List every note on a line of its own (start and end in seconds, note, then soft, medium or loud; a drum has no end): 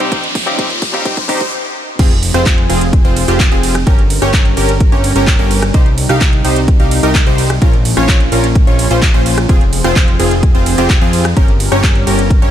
0.00 0.10 G3 medium
0.00 0.10 D#4 medium
0.00 0.10 G4 medium
0.00 closed hi-hat soft
0.00 riser medium
0.11 1.51 A#2 medium
0.11 0.22 C3 medium
0.11 1.51 F3 medium
0.11 0.22 G3 medium
0.11 0.22 C4 medium
0.11 1.51 C#4 medium
0.11 0.26 D#4 medium
0.11 0.22 D#4 medium
0.11 0.26 G4 medium
0.11 0.22 G4 medium
0.11 0.26 C5 loud
0.11 kick loud
0.11 closed hi-hat medium
0.24 closed hi-hat soft
0.35 kick loud
0.35 open hi-hat loud
0.46 0.57 C3 loud
0.46 0.57 G3 medium
0.46 0.57 C4 medium
0.46 0.57 D#4 loud
0.46 0.57 D#4 medium
0.46 0.57 G4 medium
0.46 0.57 G4 loud
0.46 0.57 F5 loud
0.46 closed hi-hat soft
0.58 0.68 C3 medium
0.58 0.69 G3 medium
0.58 0.69 C4 medium
0.58 0.73 D#4 medium
0.58 0.69 D#4 medium
0.58 0.73 G4 medium
0.58 0.69 G4 medium
0.58 0.73 C5 loud
0.58 kick loud
0.58 closed hi-hat medium
0.70 closed hi-hat soft
0.82 kick loud
0.82 open hi-hat medium
0.93 1.03 C3 medium
0.93 1.03 G3 medium
0.93 1.04 C4 medium
0.93 1.04 D#4 loud
0.93 1.04 D#4 medium
0.93 1.04 G4 medium
0.93 1.04 G4 loud
0.93 1.04 F5 loud
0.93 closed hi-hat soft
1.05 1.15 C3 medium
1.05 1.16 G3 medium
1.05 1.16 C4 medium
1.05 1.20 D#4 medium
1.05 1.16 D#4 medium
1.05 1.20 G4 medium
1.05 1.16 G4 medium
1.05 1.20 C5 loud
1.05 kick loud
1.05 closed hi-hat medium
1.17 kick medium
1.17 closed hi-hat soft
1.28 1.39 C3 medium
1.28 1.39 G3 medium
1.28 1.39 C4 medium
1.28 1.43 D#4 loud
1.28 1.39 D#4 medium
1.28 1.43 G4 medium
1.28 1.39 G4 medium
1.28 1.43 C5 loud
1.28 kick loud
1.28 open hi-hat loud
1.41 kick loud
1.41 closed hi-hat soft
1.99 2.32 F1 loud
1.99 3.85 F3 medium
1.99 2.14 C4 loud
1.99 3.85 C4 medium
1.99 2.14 F4 medium
1.99 2.14 G#4 loud
1.99 3.85 G#4 medium
1.99 kick loud
1.99 closed hi-hat medium
1.99 crash loud
2.11 closed hi-hat soft
2.23 open hi-hat loud
2.23 ride medium
2.34 2.67 F1 loud
2.34 2.67 C4 loud
2.34 2.67 F4 medium
2.34 2.67 C5 loud
2.34 cross-stick medium
2.34 closed hi-hat medium
2.46 kick loud
2.46 clap loud
2.46 closed hi-hat medium
2.58 closed hi-hat soft
2.69 3.02 F1 loud
2.69 2.84 C4 medium
2.69 2.84 F4 medium
2.69 2.84 G#4 loud
2.69 open hi-hat loud
2.69 ride medium
2.81 closed hi-hat medium
2.93 kick loud
2.93 closed hi-hat medium
3.05 3.26 F1 loud
3.05 3.25 C4 medium
3.05 3.25 F4 medium
3.05 3.25 C5 medium
3.05 closed hi-hat soft
3.17 open hi-hat loud
3.17 ride medium
3.28 3.49 F1 loud
3.28 3.49 C4 loud
3.28 3.49 F4 medium
3.28 3.49 G4 loud
3.28 closed hi-hat medium
3.40 kick loud
3.40 clap loud
3.40 closed hi-hat medium
3.52 3.84 F1 loud
3.52 3.75 C4 loud
3.52 3.75 F4 medium
3.52 3.75 G#4 loud
3.52 closed hi-hat soft
3.63 open hi-hat loud
3.63 ride medium
3.75 cross-stick medium
3.75 closed hi-hat medium
3.87 4.20 G1 loud
3.87 7.58 G3 medium
3.87 4.01 C#4 medium
3.87 5.72 C#4 medium
3.87 4.01 G4 medium
3.87 4.01 A#4 loud
3.87 5.72 A#4 medium
3.87 kick loud
3.87 closed hi-hat medium
3.99 closed hi-hat soft
4.10 open hi-hat loud
4.10 ride medium
4.22 4.55 G1 loud
4.22 4.54 C#4 loud
4.22 4.54 G4 medium
4.22 4.54 C#5 loud
4.22 cross-stick medium
4.22 closed hi-hat medium
4.34 kick loud
4.34 clap loud
4.34 closed hi-hat medium
4.45 closed hi-hat soft
4.57 4.90 G1 loud
4.57 4.71 C#4 medium
4.57 4.71 G4 medium
4.57 4.71 A#4 loud
4.57 open hi-hat loud
4.57 ride medium
4.69 closed hi-hat medium
4.80 kick loud
4.80 closed hi-hat medium
4.92 5.13 G1 loud
4.92 5.13 C#4 medium
4.92 5.13 G4 medium
4.92 5.13 C#5 medium
4.92 closed hi-hat soft
5.04 open hi-hat loud
5.04 ride medium
5.16 5.37 G1 loud
5.16 5.36 C#4 loud
5.16 5.36 G4 medium
5.16 5.36 A#4 loud
5.16 closed hi-hat medium
5.27 kick loud
5.27 clap loud
5.27 closed hi-hat medium
5.39 5.72 G1 loud
5.39 5.62 C#4 loud
5.39 5.62 G4 medium
5.39 5.62 A#4 loud
5.39 closed hi-hat soft
5.51 open hi-hat loud
5.51 ride medium
5.62 cross-stick medium
5.62 closed hi-hat medium
5.74 6.07 C2 loud
5.74 7.60 C3 medium
5.74 7.60 D#4 medium
5.74 5.89 D#4 loud
5.74 5.89 G4 medium
5.74 5.89 C5 loud
5.74 kick loud
5.74 closed hi-hat medium
5.86 closed hi-hat soft
5.98 open hi-hat loud
5.98 ride medium
6.09 6.42 C2 loud
6.09 6.42 D#4 loud
6.09 6.42 G4 medium
6.09 6.42 F5 loud
6.09 cross-stick medium
6.09 closed hi-hat medium
6.21 kick loud
6.21 clap loud
6.21 closed hi-hat medium
6.33 closed hi-hat soft
6.45 6.77 C2 medium
6.45 6.59 D#4 medium
6.45 6.59 G4 medium
6.45 6.59 C5 medium
6.45 open hi-hat loud
6.45 ride medium
6.56 closed hi-hat medium
6.68 kick loud
6.68 closed hi-hat medium
6.80 7.01 C2 loud
6.80 7.00 D#4 medium
6.80 7.00 G4 medium
6.80 7.00 F5 medium
6.80 closed hi-hat soft
6.91 open hi-hat loud
6.91 ride medium
7.03 7.24 C2 loud
7.03 7.24 D#4 loud
7.03 7.24 G4 medium
7.03 7.24 A#4 loud
7.03 closed hi-hat medium
7.15 kick loud
7.15 clap loud
7.15 closed hi-hat medium
7.27 7.59 C2 loud
7.27 7.50 D#4 loud
7.27 7.50 G4 medium
7.27 7.50 C5 loud
7.27 closed hi-hat soft
7.38 open hi-hat loud
7.38 ride medium
7.50 cross-stick medium
7.50 closed hi-hat medium
7.62 7.95 A#1 loud
7.62 11.33 F3 medium
7.62 9.47 A#3 medium
7.62 9.47 C#4 medium
7.62 7.76 C#4 loud
7.62 7.76 F4 medium
7.62 7.76 A#4 loud
7.62 kick loud
7.62 closed hi-hat medium
7.73 closed hi-hat soft
7.85 open hi-hat loud
7.85 ride medium
7.97 8.30 A#1 loud
7.97 8.29 C#4 loud
7.97 8.29 F4 medium
7.97 8.29 C#5 loud
7.97 cross-stick medium
8.09 kick loud
8.09 clap loud
8.09 closed hi-hat soft
8.20 closed hi-hat soft
8.32 8.65 A#1 loud
8.32 8.46 C#4 medium
8.32 8.46 F4 medium
8.32 8.46 A#4 medium
8.32 open hi-hat loud
8.32 ride medium
8.44 closed hi-hat medium
8.55 kick loud
8.55 closed hi-hat medium
8.67 8.88 A#1 loud
8.67 8.88 C#4 medium
8.67 8.88 F4 medium
8.67 8.88 C#5 medium
8.67 closed hi-hat soft
8.79 open hi-hat loud
8.79 ride medium
8.91 9.12 A#1 loud
8.91 9.05 C#4 medium
8.91 9.05 F4 medium
8.91 9.05 C5 loud
8.91 closed hi-hat soft
9.02 kick loud
9.02 clap loud
9.02 closed hi-hat medium
9.14 9.47 A#1 loud
9.14 9.37 C#4 loud
9.14 9.37 F4 medium
9.14 9.37 C5 loud
9.14 closed hi-hat soft
9.26 open hi-hat loud
9.26 ride medium
9.38 cross-stick medium
9.38 closed hi-hat soft
9.49 9.82 F1 loud
9.49 9.64 C4 loud
9.49 11.35 C4 medium
9.49 9.64 F4 medium
9.49 11.35 G#4 medium
9.49 9.64 G#4 loud
9.49 kick loud
9.49 closed hi-hat medium
9.61 closed hi-hat soft
9.73 open hi-hat loud
9.73 ride medium
9.84 10.17 F1 loud
9.84 10.17 C4 loud
9.84 10.17 F4 medium
9.84 10.17 C5 loud
9.84 cross-stick medium
9.84 closed hi-hat medium
9.96 kick loud
9.96 clap loud
9.96 closed hi-hat medium
10.08 closed hi-hat soft
10.20 10.52 F1 loud
10.20 10.34 C4 medium
10.20 10.34 F4 medium
10.20 10.34 G#4 medium
10.20 open hi-hat medium
10.20 ride medium
10.31 closed hi-hat medium
10.43 kick loud
10.43 closed hi-hat medium
10.55 10.76 F1 medium
10.55 10.75 C4 medium
10.55 10.75 F4 medium
10.55 10.75 C5 medium
10.55 closed hi-hat soft
10.66 open hi-hat loud
10.66 ride medium
10.78 10.99 F1 loud
10.78 10.99 C4 loud
10.78 10.99 F4 medium
10.78 10.99 G4 loud
10.78 closed hi-hat medium
10.90 kick loud
10.90 clap loud
10.90 closed hi-hat medium
11.02 11.34 F2 loud
11.02 11.25 C4 loud
11.02 11.25 F4 medium
11.02 11.25 G#4 loud
11.02 closed hi-hat soft
11.13 open hi-hat medium
11.13 ride medium
11.25 cross-stick medium
11.25 closed hi-hat soft
11.37 11.70 G1 loud
11.37 12.51 G3 medium
11.37 11.51 C#4 loud
11.37 12.51 C#4 medium
11.37 11.51 G4 medium
11.37 11.51 A#4 loud
11.37 12.51 A#4 medium
11.37 kick loud
11.37 closed hi-hat medium
11.48 closed hi-hat soft
11.60 open hi-hat loud
11.60 ride medium
11.72 12.05 G1 loud
11.72 12.04 C#4 medium
11.72 12.04 G4 medium
11.72 12.04 C#5 loud
11.72 cross-stick medium
11.72 closed hi-hat medium
11.84 kick loud
11.84 clap loud
11.84 closed hi-hat medium
11.95 closed hi-hat soft
12.07 12.40 G1 loud
12.07 12.21 C#4 medium
12.07 12.21 G4 medium
12.07 12.21 A#4 medium
12.07 open hi-hat medium
12.07 ride medium
12.19 closed hi-hat medium
12.30 kick loud
12.30 closed hi-hat medium
12.42 12.51 G1 medium
12.42 12.51 C#4 medium
12.42 12.51 G4 medium
12.42 12.51 C#5 medium
12.42 closed hi-hat soft